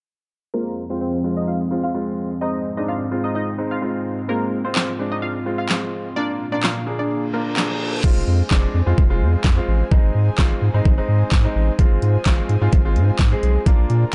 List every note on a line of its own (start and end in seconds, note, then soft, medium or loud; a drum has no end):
0.54 2.39 F2 medium
0.54 2.40 F3 medium
0.54 0.80 G#3 medium
0.54 2.40 G#3 medium
0.54 0.70 A#3 medium
0.54 2.39 C4 medium
0.54 0.81 C4 medium
0.54 0.81 F4 medium
0.54 0.69 A#4 loud
0.90 1.16 G#3 medium
0.90 1.16 C4 medium
0.90 0.98 C4 medium
0.90 1.16 F4 medium
0.90 0.97 C5 medium
1.01 1.10 C4 medium
1.01 1.09 C5 medium
1.24 1.60 G#3 medium
1.24 1.60 C4 medium
1.24 1.60 F4 medium
1.37 1.44 D#4 medium
1.37 1.44 D#5 medium
1.47 1.56 F4 medium
1.47 1.56 F5 medium
1.71 1.89 G#3 medium
1.71 1.89 C4 medium
1.71 1.89 F4 medium
1.83 2.00 F4 medium
1.83 1.99 F5 medium
1.94 2.30 G#3 medium
1.94 2.30 C4 medium
1.94 2.30 F4 medium
2.41 6.13 G#2 medium
2.41 2.68 G#3 medium
2.41 6.13 G#3 medium
2.41 6.12 C4 medium
2.41 2.68 C4 medium
2.41 4.27 D#4 medium
2.41 2.68 D#4 medium
2.41 2.58 D#4 medium
2.41 2.57 D#5 loud
2.77 3.03 G#3 medium
2.77 3.03 C4 medium
2.77 3.04 D4 medium
2.77 2.85 D#4 medium
2.77 2.85 D#5 medium
2.88 2.97 F4 medium
2.88 2.97 F5 medium
3.11 3.47 G#3 medium
3.11 3.48 C4 medium
3.11 3.48 F4 medium
3.24 3.32 D#4 medium
3.24 3.31 D#5 medium
3.35 3.44 D#4 medium
3.35 3.43 D#5 medium
3.58 3.76 G#3 medium
3.58 3.76 C4 medium
3.58 3.77 D#4 medium
3.71 3.87 F4 medium
3.71 3.87 F5 medium
3.82 4.18 G#3 medium
3.82 4.18 C4 medium
3.82 4.18 F4 medium
4.28 4.55 G#3 medium
4.28 4.45 A#3 medium
4.28 4.55 C4 medium
4.28 8.00 F4 medium
4.28 4.56 F4 medium
4.28 4.45 A#4 loud
4.64 4.91 G#3 medium
4.64 4.91 C4 medium
4.64 4.73 C4 medium
4.64 4.91 F4 medium
4.64 4.72 C5 medium
4.76 4.85 C4 medium
4.76 4.84 C5 medium
4.76 snare medium
4.76 clap loud
4.99 5.35 G#3 medium
4.99 5.35 C4 medium
4.99 5.35 D4 medium
5.12 5.19 D#4 medium
5.12 5.19 D#5 medium
5.22 5.31 F4 medium
5.22 5.31 F5 medium
5.46 5.64 G#3 medium
5.46 5.64 C4 medium
5.46 5.64 F4 medium
5.58 5.74 F4 medium
5.58 5.74 F5 medium
5.69 6.05 G#3 medium
5.69 6.05 C4 medium
5.69 6.06 F4 medium
5.69 snare medium
5.69 clap loud
6.16 8.02 A#2 medium
6.16 6.43 A#3 medium
6.16 8.02 A#3 medium
6.16 6.43 D4 medium
6.16 8.02 D4 medium
6.16 6.33 D4 medium
6.16 6.43 F4 medium
6.16 6.32 D5 loud
6.52 6.78 A#3 medium
6.52 6.78 D4 medium
6.52 6.60 D4 medium
6.52 6.79 F4 medium
6.52 6.60 D5 medium
6.63 6.72 F4 medium
6.63 6.72 F5 medium
6.63 snare medium
6.63 clap loud
6.86 7.22 A#3 medium
6.86 7.23 D4 medium
6.86 7.23 G#4 medium
6.99 7.07 D4 medium
6.99 7.06 D5 medium
7.10 reverse cymbal medium
7.33 7.51 A#3 medium
7.33 7.50 A#3 medium
7.33 7.52 D4 medium
7.33 7.52 F4 medium
7.33 7.49 A#4 medium
7.57 7.93 A#3 medium
7.57 7.93 D4 medium
7.57 7.93 G#4 medium
7.57 snare medium
7.57 clap loud
8.04 8.12 F1 loud
8.04 8.40 G#3 medium
8.04 8.40 C4 medium
8.04 9.89 F4 medium
8.04 8.40 F4 medium
8.04 11.75 G#4 medium
8.04 9.90 C5 medium
8.04 11.75 G#5 medium
8.04 kick loud
8.04 crash medium
8.16 8.23 F1 loud
8.27 8.43 F2 loud
8.51 8.66 F1 loud
8.51 8.77 G#3 medium
8.51 8.77 C4 medium
8.51 8.78 D4 medium
8.51 kick loud
8.51 snare medium
8.51 clap loud
8.74 8.82 F2 loud
8.86 8.94 F2 loud
8.86 9.04 G#3 medium
8.86 9.04 C4 medium
8.86 9.04 F4 medium
8.98 9.23 F1 loud
8.98 kick loud
9.10 9.44 G#3 medium
9.10 9.45 C4 medium
9.10 9.45 F4 medium
9.21 9.36 F2 loud
9.44 9.60 F2 loud
9.44 kick loud
9.44 snare medium
9.44 clap loud
9.57 9.83 G#3 medium
9.57 9.83 C4 medium
9.57 9.83 F4 medium
9.68 9.83 A1 loud
9.91 10.00 G#1 loud
9.91 10.27 G#3 medium
9.91 10.27 C4 medium
9.91 11.77 D#4 medium
9.91 10.27 D#4 medium
9.91 11.77 C5 medium
9.91 kick loud
10.04 10.11 G#1 loud
10.15 10.30 G#2 medium
10.38 10.54 G#1 loud
10.38 10.65 G#3 medium
10.38 10.65 C4 medium
10.38 10.65 F4 loud
10.38 kick loud
10.38 snare medium
10.38 clap loud
10.62 10.70 G#2 loud
10.74 10.81 G#2 medium
10.74 10.91 G#3 medium
10.74 10.91 C4 medium
10.74 10.92 D#4 medium
10.85 11.01 G#1 loud
10.85 kick loud
10.98 11.32 G#3 medium
10.98 11.32 C4 medium
10.98 11.32 D#4 medium
11.08 11.24 G#2 loud
11.32 11.47 G#2 loud
11.32 kick loud
11.32 snare medium
11.32 clap loud
11.44 11.71 G#3 medium
11.44 11.71 C4 medium
11.44 11.71 D#4 loud
11.55 11.71 A1 medium
11.79 11.87 G#1 loud
11.79 12.15 G#3 medium
11.79 12.15 C4 medium
11.79 14.15 F4 medium
11.79 12.15 F4 medium
11.79 13.64 G#4 medium
11.79 13.64 C5 medium
11.79 13.64 G#5 medium
11.79 kick loud
11.79 closed hi-hat medium
11.91 11.98 G#1 medium
12.02 12.18 G#2 medium
12.02 closed hi-hat soft
12.25 12.41 G#1 loud
12.25 12.52 G#3 medium
12.25 12.52 C4 medium
12.25 12.52 F4 medium
12.25 kick loud
12.25 snare medium
12.25 clap loud
12.25 closed hi-hat medium
12.49 12.57 G#2 medium
12.49 closed hi-hat soft
12.61 12.69 G#2 loud
12.61 12.79 G#3 medium
12.61 12.79 C4 medium
12.61 12.79 F4 medium
12.73 12.97 G#1 loud
12.73 kick loud
12.73 closed hi-hat medium
12.85 13.19 G#3 medium
12.85 13.20 C4 medium
12.85 13.20 F4 medium
12.96 13.11 G#2 loud
12.96 closed hi-hat soft
13.19 13.34 G#2 loud
13.19 kick loud
13.19 snare medium
13.19 clap loud
13.19 closed hi-hat medium
13.32 13.58 G#3 medium
13.32 13.58 C4 medium
13.32 13.58 G#4 loud
13.43 13.58 B1 medium
13.43 closed hi-hat medium
13.66 13.74 A#1 loud
13.66 14.02 A#3 medium
13.66 14.02 D4 medium
13.66 14.02 F4 medium
13.66 14.15 A#4 medium
13.66 14.15 D5 medium
13.66 14.15 A#5 medium
13.66 kick loud
13.66 closed hi-hat medium
13.79 13.86 A#1 loud
13.90 14.05 A#2 medium
13.90 closed hi-hat soft